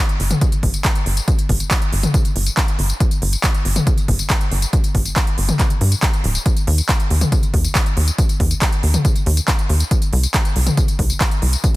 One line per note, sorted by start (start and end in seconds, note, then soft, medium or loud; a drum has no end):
0.09 closed hi-hat medium
0.09 tambourine soft
0.20 0.34 G1 medium
0.20 open hi-hat loud
0.31 closed hi-hat medium
0.31 mid tom medium
0.31 tambourine medium
0.41 kick loud
0.41 closed hi-hat medium
0.41 tambourine soft
0.52 closed hi-hat medium
0.52 tambourine soft
0.63 0.77 G1 medium
0.63 kick medium
0.63 open hi-hat loud
0.74 closed hi-hat medium
0.74 tambourine medium
0.85 kick loud
0.85 clap loud
0.85 closed hi-hat medium
0.85 tambourine medium
0.95 closed hi-hat medium
0.95 tambourine soft
1.06 1.20 G1 medium
1.06 open hi-hat loud
1.17 closed hi-hat medium
1.17 tambourine medium
1.28 kick loud
1.28 closed hi-hat medium
1.28 tambourine soft
1.39 closed hi-hat medium
1.39 tambourine soft
1.49 1.63 G1 loud
1.49 kick medium
1.49 open hi-hat loud
1.60 closed hi-hat medium
1.60 tambourine medium
1.71 kick loud
1.71 clap loud
1.71 closed hi-hat medium
1.71 tambourine soft
1.82 closed hi-hat medium
1.82 tambourine soft
1.92 2.06 G1 medium
1.92 open hi-hat loud
2.03 closed hi-hat medium
2.03 mid tom medium
2.03 tambourine medium
2.14 kick loud
2.14 closed hi-hat medium
2.14 tambourine soft
2.25 closed hi-hat medium
2.25 tambourine soft
2.36 2.49 G1 medium
2.36 open hi-hat loud
2.46 closed hi-hat medium
2.46 tambourine medium
2.57 kick loud
2.57 clap loud
2.57 closed hi-hat medium
2.57 tambourine soft
2.68 closed hi-hat medium
2.68 tambourine soft
2.79 2.92 G1 medium
2.79 open hi-hat loud
2.90 closed hi-hat medium
2.90 tambourine medium
3.00 kick loud
3.00 closed hi-hat medium
3.00 tambourine medium
3.11 closed hi-hat medium
3.11 tambourine soft
3.22 3.36 G1 loud
3.22 open hi-hat loud
3.33 closed hi-hat medium
3.33 tambourine medium
3.44 kick loud
3.44 clap loud
3.44 closed hi-hat medium
3.54 closed hi-hat medium
3.54 tambourine soft
3.65 3.79 G1 medium
3.65 open hi-hat loud
3.76 closed hi-hat medium
3.76 mid tom medium
3.76 tambourine medium
3.87 kick loud
3.87 closed hi-hat medium
3.87 tambourine soft
3.98 closed hi-hat medium
3.98 tambourine soft
4.08 4.22 G1 medium
4.08 kick medium
4.08 open hi-hat loud
4.19 closed hi-hat medium
4.19 tambourine medium
4.30 kick loud
4.30 clap loud
4.30 closed hi-hat medium
4.30 tambourine medium
4.41 closed hi-hat soft
4.41 tambourine soft
4.51 4.65 G1 medium
4.51 open hi-hat loud
4.62 closed hi-hat medium
4.62 tambourine medium
4.73 kick loud
4.73 closed hi-hat medium
4.73 tambourine medium
4.84 closed hi-hat medium
4.84 tambourine soft
4.95 5.08 G1 loud
4.95 kick medium
4.95 open hi-hat loud
5.05 closed hi-hat soft
5.05 tambourine medium
5.16 kick loud
5.16 clap loud
5.16 closed hi-hat medium
5.16 tambourine medium
5.27 closed hi-hat soft
5.27 tambourine soft
5.38 5.51 G1 medium
5.38 open hi-hat loud
5.49 closed hi-hat soft
5.49 mid tom medium
5.49 tambourine medium
5.59 kick loud
5.59 clap medium
5.59 closed hi-hat medium
5.59 tambourine medium
5.70 closed hi-hat medium
5.70 tambourine soft
5.81 5.95 G2 medium
5.81 open hi-hat loud
5.92 closed hi-hat medium
5.92 tambourine medium
6.03 kick loud
6.03 clap loud
6.03 closed hi-hat medium
6.03 tambourine medium
6.13 closed hi-hat soft
6.13 tambourine soft
6.24 6.38 D1 loud
6.24 open hi-hat loud
6.35 closed hi-hat soft
6.35 tambourine medium
6.46 kick loud
6.46 closed hi-hat medium
6.46 tambourine medium
6.57 closed hi-hat medium
6.57 tambourine soft
6.67 6.81 D#2 loud
6.67 open hi-hat loud
6.78 closed hi-hat soft
6.78 tambourine medium
6.89 kick loud
6.89 clap loud
6.89 closed hi-hat medium
6.89 tambourine medium
7.00 closed hi-hat medium
7.00 tambourine soft
7.10 7.24 D#2 medium
7.10 open hi-hat loud
7.21 closed hi-hat medium
7.21 mid tom medium
7.21 tambourine medium
7.32 kick loud
7.32 closed hi-hat medium
7.32 tambourine medium
7.43 closed hi-hat soft
7.43 tambourine soft
7.54 7.67 D#2 medium
7.54 kick medium
7.54 open hi-hat loud
7.64 closed hi-hat soft
7.64 tambourine medium
7.75 kick loud
7.75 clap loud
7.75 closed hi-hat medium
7.75 tambourine medium
7.86 closed hi-hat soft
7.86 tambourine soft
7.97 8.11 D#2 medium
7.97 open hi-hat loud
8.08 closed hi-hat soft
8.08 tambourine medium
8.18 kick loud
8.18 closed hi-hat medium
8.18 tambourine medium
8.29 closed hi-hat medium
8.29 tambourine soft
8.40 8.54 D#2 loud
8.40 kick medium
8.40 open hi-hat loud
8.51 closed hi-hat medium
8.51 tambourine medium
8.62 kick loud
8.62 clap loud
8.62 closed hi-hat medium
8.62 tambourine medium
8.72 closed hi-hat medium
8.72 tambourine soft
8.83 8.97 D#2 medium
8.83 open hi-hat loud
8.94 closed hi-hat medium
8.94 mid tom medium
8.94 tambourine medium
9.05 kick loud
9.05 closed hi-hat medium
9.05 tambourine medium
9.16 closed hi-hat medium
9.16 tambourine soft
9.26 9.40 D#2 medium
9.26 open hi-hat loud
9.37 closed hi-hat medium
9.37 tambourine medium
9.48 kick loud
9.48 clap loud
9.48 closed hi-hat medium
9.48 tambourine medium
9.59 closed hi-hat soft
9.59 tambourine soft
9.69 9.83 D#2 medium
9.69 open hi-hat loud
9.80 closed hi-hat soft
9.80 tambourine medium
9.91 kick loud
9.91 closed hi-hat medium
9.91 tambourine medium
10.02 closed hi-hat medium
10.02 tambourine soft
10.13 10.26 C2 loud
10.13 open hi-hat loud
10.23 closed hi-hat medium
10.23 tambourine medium
10.34 kick loud
10.34 clap loud
10.34 closed hi-hat medium
10.34 tambourine medium
10.45 closed hi-hat medium
10.45 tambourine soft
10.56 10.69 C2 medium
10.56 open hi-hat loud
10.67 closed hi-hat medium
10.67 mid tom medium
10.67 tambourine medium
10.77 kick loud
10.77 closed hi-hat medium
10.77 tambourine medium
10.88 closed hi-hat medium
10.88 tambourine soft
10.99 11.13 C2 medium
10.99 kick medium
10.99 open hi-hat loud
11.10 closed hi-hat medium
11.10 tambourine medium
11.21 kick loud
11.21 clap loud
11.21 closed hi-hat medium
11.21 tambourine medium
11.31 closed hi-hat medium
11.31 tambourine soft
11.42 11.56 C2 medium
11.42 open hi-hat loud
11.53 closed hi-hat medium
11.53 tambourine medium
11.64 kick loud
11.64 closed hi-hat medium
11.64 tambourine medium